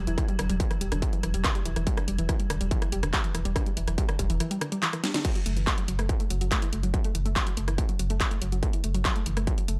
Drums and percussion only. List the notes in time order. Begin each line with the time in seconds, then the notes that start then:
0.07 closed hi-hat
0.18 kick, cross-stick, closed hi-hat
0.28 closed hi-hat
0.39 cross-stick, open hi-hat
0.50 closed hi-hat
0.60 kick, closed hi-hat
0.71 cross-stick, closed hi-hat
0.81 open hi-hat
0.92 cross-stick, closed hi-hat
1.02 kick, closed hi-hat
1.13 closed hi-hat
1.23 cross-stick, open hi-hat
1.34 closed hi-hat
1.44 kick, cross-stick, clap, closed hi-hat
1.55 closed hi-hat
1.66 open hi-hat
1.76 cross-stick, closed hi-hat
1.87 kick, closed hi-hat
1.97 cross-stick, closed hi-hat
2.08 open hi-hat
2.19 closed hi-hat
2.29 kick, cross-stick, closed hi-hat
2.40 closed hi-hat
2.50 cross-stick, open hi-hat
2.61 closed hi-hat
2.71 kick, closed hi-hat
2.82 cross-stick, closed hi-hat
2.92 open hi-hat
3.03 cross-stick, closed hi-hat
3.13 kick, clap, closed hi-hat
3.24 closed hi-hat
3.35 cross-stick, open hi-hat
3.45 closed hi-hat
3.56 kick, cross-stick, closed hi-hat
3.66 closed hi-hat
3.77 open hi-hat
3.88 cross-stick, closed hi-hat
3.98 kick, closed hi-hat
4.09 cross-stick, closed hi-hat
4.19 kick, open hi-hat
4.30 closed hi-hat
4.40 cross-stick, closed hi-hat
4.51 closed hi-hat
4.61 cross-stick, open hi-hat
4.72 closed hi-hat
4.82 clap, open hi-hat
4.93 cross-stick, closed hi-hat
5.04 snare, open hi-hat
5.14 snare, closed hi-hat
5.25 kick, closed hi-hat, crash
5.35 closed hi-hat
5.46 open hi-hat
5.57 closed hi-hat
5.67 kick, clap, closed hi-hat
5.78 closed hi-hat
5.88 open hi-hat
5.99 cross-stick, closed hi-hat
6.09 kick, closed hi-hat
6.20 closed hi-hat
6.30 open hi-hat
6.41 closed hi-hat
6.52 kick, clap, closed hi-hat
6.62 closed hi-hat
6.73 open hi-hat
6.83 closed hi-hat
6.94 kick, closed hi-hat
7.04 closed hi-hat
7.15 open hi-hat
7.26 closed hi-hat
7.36 kick, clap, closed hi-hat
7.47 closed hi-hat
7.57 open hi-hat
7.68 cross-stick, closed hi-hat
7.78 kick, closed hi-hat
7.89 closed hi-hat
7.99 open hi-hat
8.10 closed hi-hat
8.20 kick, clap, closed hi-hat
8.31 closed hi-hat
8.42 open hi-hat
8.52 closed hi-hat
8.63 kick, closed hi-hat
8.73 closed hi-hat
8.84 open hi-hat
8.95 closed hi-hat
9.05 kick, clap, closed hi-hat
9.16 closed hi-hat
9.26 open hi-hat
9.37 cross-stick, closed hi-hat
9.47 kick, closed hi-hat
9.58 closed hi-hat
9.68 open hi-hat